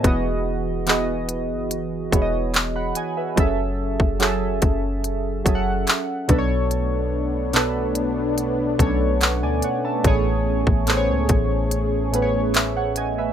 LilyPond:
<<
  \new Staff \with { instrumentName = "Synth keys" } { \time 4/4 \key e \major \tempo 4 = 72 << { r2. r16 <fis'' b''>16 <dis'' gis''>16 <b' e''>16~ | <b' e''>16 r2. r8. | r2. <cis'' fis''>16 <d'' gis''>16 <cis'' fis''>16 <e'' a''>16~ | <e'' a''>16 r2 r8. <b' e''>16 <cis'' fis''>16 <dis'' gis''>16 <b' e''>16 | } \\ { <e b fis' gis' dis''>8 r8 <e b fis' gis' dis''>4 r8 <e b fis' gis' cis'' dis''>4 r8 | <fis cis' gis' a' e''>8 r8 <fis cis' gis' a' e''>4 r8 <fis cis' gis' a' e'' fis''>4 <b, b d' a' b' cis''>8~ | <b, b d' a' b' cis''>8 r8 <b, b d' a' b'>4 r8 <b, b cis' d' a' cis''>4 r8 | <a, a b gis' cis''>8 r8 <a, a b gis' c'' cis''>4 r8 <a, a b gis' b' cis''>4 r8 | } >> }
  \new Staff \with { instrumentName = "Analog synth pad" } { \time 4/4 \key e \major r1 | r1 | <a b d'>1 | <cis' gis'>1 | }
  \new Staff \with { instrumentName = "808-style bass" } { \clef bass \time 4/4 \key e \major e,,4.~ e,,16 fis,,8. e,,4 r8 | fis,,8. fis,,8. fis,,4 fis,,8 r8 b,,8~ | b,,2~ b,,8 b,,8. d,16 r8 | a,,8. a,,8 cis,16 a,,2~ a,,8 | }
  \new DrumStaff \with { instrumentName = "Drums" } \drummode { \time 4/4 <hh bd>4 <hc hh>8 hh8 hh8 <hh bd>8 <hc hh>8 hh8 | <hh bd>8. bd16 <hc hh>8 <hh bd>8 hh8 <hh bd>8 <hc hh>8 <hh bd>8 | hh4 <hc hh>8 hh8 hh8 <hh bd>8 <hc hh>8 hh8 | <hh bd>8. bd16 <hc hh>8 <hh bd>8 hh8 hh8 <hc hh>8 hh8 | }
>>